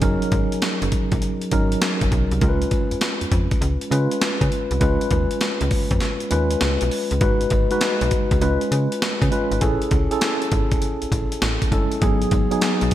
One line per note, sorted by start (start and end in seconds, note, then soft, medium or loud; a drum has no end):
0.00 0.18 F#1 loud
0.00 1.51 F#3 medium
0.00 0.02 C#4 medium
0.00 1.11 C#4 medium
0.00 0.02 D#4 medium
0.00 1.12 D#4 medium
0.00 2.43 G#4 medium
0.00 1.12 A#4 loud
0.00 kick loud
0.00 closed hi-hat medium
0.22 closed hi-hat medium
0.32 0.48 G#1 loud
0.32 kick medium
0.32 closed hi-hat medium
0.52 closed hi-hat medium
0.62 snare loud
0.62 closed hi-hat medium
0.82 0.90 F#1 loud
0.82 closed hi-hat medium
0.92 kick medium
0.92 closed hi-hat medium
1.12 1.20 A#1 medium
1.12 kick loud
1.12 closed hi-hat medium
1.22 closed hi-hat medium
1.41 closed hi-hat soft
1.51 1.76 G#1 loud
1.51 2.34 F#3 medium
1.51 2.34 C#4 medium
1.51 2.34 D#4 medium
1.51 2.34 A#4 medium
1.51 kick medium
1.51 closed hi-hat medium
1.72 closed hi-hat medium
1.82 snare loud
1.82 closed hi-hat medium
2.01 2.10 F#1 medium
2.01 kick medium
2.01 closed hi-hat medium
2.12 2.28 B1 medium
2.12 kick medium
2.12 closed hi-hat medium
2.31 2.40 C2 medium
2.31 closed hi-hat soft
2.41 2.66 C#2 loud
2.41 3.51 G#3 medium
2.41 3.51 C#4 medium
2.41 3.51 F4 medium
2.41 2.50 A#4 medium
2.41 kick loud
2.41 closed hi-hat medium
2.49 3.55 B4 medium
2.62 closed hi-hat medium
2.71 kick medium
2.71 closed hi-hat medium
2.91 2.96 F2 soft
2.91 closed hi-hat medium
3.01 snare loud
3.01 closed hi-hat medium
3.21 3.26 F2 soft
3.21 closed hi-hat medium
3.32 3.48 F2 medium
3.32 kick medium
3.32 closed hi-hat medium
3.51 kick medium
3.51 closed hi-hat medium
3.61 3.78 C#2 medium
3.61 closed hi-hat medium
3.81 closed hi-hat medium
3.90 4.08 C#3 loud
3.90 4.73 G#3 medium
3.90 4.74 C#4 medium
3.90 4.74 F4 medium
3.90 4.74 B4 medium
3.90 closed hi-hat medium
4.11 closed hi-hat medium
4.22 snare loud
4.22 closed hi-hat medium
4.41 4.50 C#3 loud
4.41 kick medium
4.41 closed hi-hat medium
4.52 closed hi-hat medium
4.71 4.80 C2 medium
4.71 closed hi-hat soft
4.80 4.98 C#2 loud
4.80 5.90 G#3 medium
4.80 5.91 C#4 medium
4.80 5.91 F4 medium
4.80 5.91 B4 medium
4.80 kick loud
4.80 closed hi-hat medium
5.01 closed hi-hat medium
5.11 5.28 D#2 medium
5.11 kick medium
5.11 closed hi-hat medium
5.31 closed hi-hat medium
5.41 snare medium
5.41 closed hi-hat medium
5.61 5.70 C#2 loud
5.61 closed hi-hat medium
5.71 kick medium
5.71 open hi-hat medium
5.91 6.00 F2 medium
5.91 kick loud
5.91 closed hi-hat medium
6.00 snare medium
6.00 closed hi-hat medium
6.20 closed hi-hat soft
6.30 6.56 D#2 medium
6.30 7.13 G#3 medium
6.30 7.13 C#4 medium
6.30 7.14 F4 medium
6.30 7.14 B4 loud
6.30 closed hi-hat medium
6.51 closed hi-hat medium
6.61 6.78 C#2 medium
6.61 snare loud
6.61 closed hi-hat medium
6.81 6.90 B1 medium
6.81 closed hi-hat medium
6.91 open hi-hat medium
7.11 7.20 C#2 medium
7.11 closed hi-hat soft
7.21 7.46 G#1 loud
7.21 7.64 G#3 medium
7.21 7.64 D#4 medium
7.21 7.64 F#4 medium
7.21 7.64 B4 loud
7.21 kick loud
7.21 closed hi-hat medium
7.41 closed hi-hat soft
7.50 7.68 G#1 loud
7.50 kick loud
7.50 closed hi-hat medium
7.71 8.40 G#3 medium
7.71 8.41 D#4 medium
7.71 8.42 F#4 medium
7.71 8.41 B4 loud
7.71 closed hi-hat medium
7.81 snare loud
7.81 closed hi-hat medium
8.01 8.10 B1 loud
8.01 closed hi-hat medium
8.11 kick medium
8.11 closed hi-hat medium
8.31 8.40 C#2 medium
8.31 kick loud
8.31 closed hi-hat medium
8.41 8.58 C#2 loud
8.41 9.24 G#3 medium
8.41 9.24 C#4 medium
8.41 9.24 F4 medium
8.41 9.24 B4 loud
8.41 closed hi-hat medium
8.61 closed hi-hat soft
8.72 8.88 C#3 loud
8.72 closed hi-hat medium
8.92 closed hi-hat medium
9.02 snare loud
9.02 closed hi-hat medium
9.22 9.30 C#3 medium
9.22 kick medium
9.22 closed hi-hat medium
9.31 9.59 G#3 medium
9.31 9.59 C#4 medium
9.31 9.59 F4 medium
9.31 9.59 B4 loud
9.31 closed hi-hat medium
9.51 9.60 G#1 medium
9.51 closed hi-hat soft
9.61 9.78 A1 loud
9.61 10.04 C#4 medium
9.61 10.04 E4 medium
9.61 10.04 G#4 medium
9.61 10.04 A4 medium
9.61 kick loud
9.61 closed hi-hat medium
9.82 closed hi-hat soft
9.91 10.08 C#2 medium
9.91 kick loud
9.91 closed hi-hat medium
10.11 11.11 C#4 medium
10.11 11.12 E4 medium
10.11 11.11 G#4 medium
10.11 11.12 A4 loud
10.11 closed hi-hat medium
10.21 snare loud
10.21 closed hi-hat medium
10.42 closed hi-hat medium
10.52 10.76 G#1 loud
10.52 kick medium
10.52 closed hi-hat medium
10.71 kick loud
10.71 closed hi-hat medium
10.82 closed hi-hat medium
11.02 11.06 A1 medium
11.02 closed hi-hat soft
11.12 11.28 A1 medium
11.12 kick medium
11.12 closed hi-hat medium
11.32 closed hi-hat medium
11.42 11.58 A1 medium
11.42 snare loud
11.42 closed hi-hat medium
11.62 kick medium
11.62 closed hi-hat medium
11.71 11.88 G1 medium
11.71 11.99 G#3 medium
11.71 11.99 C#4 medium
11.71 11.99 E4 medium
11.71 12.00 A4 loud
11.71 kick medium
11.71 closed hi-hat medium
11.92 closed hi-hat medium
12.01 12.26 G#1 loud
12.01 12.44 F#3 medium
12.01 12.44 B3 medium
12.01 12.44 D#4 medium
12.01 12.44 G#4 loud
12.01 kick loud
12.01 closed hi-hat medium
12.22 closed hi-hat soft
12.31 12.48 G#1 loud
12.31 kick loud
12.31 closed hi-hat medium
12.51 12.94 F#3 medium
12.51 12.94 B3 medium
12.51 12.94 D#4 medium
12.51 12.94 G#4 loud
12.51 closed hi-hat medium
12.61 snare loud
12.61 closed hi-hat medium
12.81 12.90 B1 medium
12.81 closed hi-hat medium
12.91 closed hi-hat medium